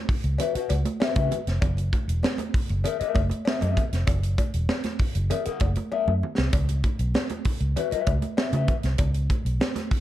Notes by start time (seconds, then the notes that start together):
0.09 muted fingered electric bass stroke, kick, open hi-hat
0.24 C#2, closed hi-hat
0.38 F#4 B4 E5, closed hi-hat, cowbell, muted conga, low conga
0.55 F#4 B4 F#5, muted fingered electric bass stroke, closed hi-hat
0.69 C#2, closed hi-hat, cowbell, high conga
0.85 closed hi-hat, high conga
1.00 F#4 B4 E5, snare, cowbell, muted conga
1.16 C#3 F#4 B4 E5, kick, closed hi-hat, muted conga, high conga
1.31 closed hi-hat, low conga
1.47 F1, snare, closed hi-hat
1.62 F#1, kick, closed hi-hat, cowbell, muted conga, low conga
1.77 closed hi-hat, muted conga
1.93 kick, closed hi-hat, high conga
2.08 E1, closed hi-hat
2.23 snare, cowbell, muted conga, high conga
2.38 closed hi-hat, muted conga, high conga
2.54 muted fingered electric bass stroke, kick, open hi-hat
2.69 F#1, closed hi-hat
2.84 G#4 A#4 E5, closed hi-hat, cowbell, muted conga, low conga
3.00 G#4 A#4 E5, muted fingered electric bass stroke, closed hi-hat
3.15 F#1, kick, closed hi-hat, cowbell, high conga
3.30 closed hi-hat, high conga
3.45 G#4 A#4 E5, snare, cowbell
3.61 F#2 G#4 A#4 E5, closed hi-hat, high conga
3.77 kick, closed hi-hat, low conga
3.93 F1, snare, closed hi-hat
4.07 F#1, kick, closed hi-hat, cowbell, low conga
4.23 closed hi-hat
4.38 kick, closed hi-hat, cowbell, high conga
4.54 E1, closed hi-hat
4.69 snare, cowbell, muted conga, high conga
4.84 snare, closed hi-hat, muted conga, high conga
4.99 muted fingered electric bass stroke, kick, open hi-hat
5.15 F#1, closed hi-hat
5.30 G#4 A#4 E5, closed hi-hat, cowbell, muted conga, low conga
5.45 G#4 A#4 F#5, muted fingered electric bass stroke, closed hi-hat
5.60 F#1, kick, closed hi-hat, cowbell, high conga
5.75 closed hi-hat, high conga
5.92 G#4 A#4 E5, cowbell, muted conga
6.08 F#2, muted conga, high conga
6.23 low conga
6.38 C2, snare
6.53 C#2, kick, closed hi-hat, cowbell, low conga
6.69 closed hi-hat, muted conga
6.84 kick, closed hi-hat, high conga
6.99 B1, closed hi-hat
7.14 snare, cowbell, muted conga, high conga
7.29 closed hi-hat, high conga
7.45 muted fingered electric bass stroke, kick, open hi-hat
7.60 C#2, closed hi-hat
7.76 F#4 B4 E5, closed hi-hat, cowbell, low conga
7.91 F#4 B4 E5, muted fingered electric bass stroke, closed hi-hat, muted conga
8.06 C#2, kick, closed hi-hat, cowbell, high conga
8.22 closed hi-hat, high conga
8.37 F#4 B4 E5, snare, cowbell
8.53 C#3 F#4 B4 E5, closed hi-hat, high conga
8.68 kick, closed hi-hat, low conga
8.83 C2, snare, closed hi-hat
8.98 C#2, kick, closed hi-hat, cowbell, muted conga, low conga
9.14 closed hi-hat
9.30 kick, closed hi-hat, high conga
9.45 B1, closed hi-hat
9.60 snare, cowbell, high conga
9.76 snare, closed hi-hat, muted conga, high conga
9.91 muted fingered electric bass stroke, kick, open hi-hat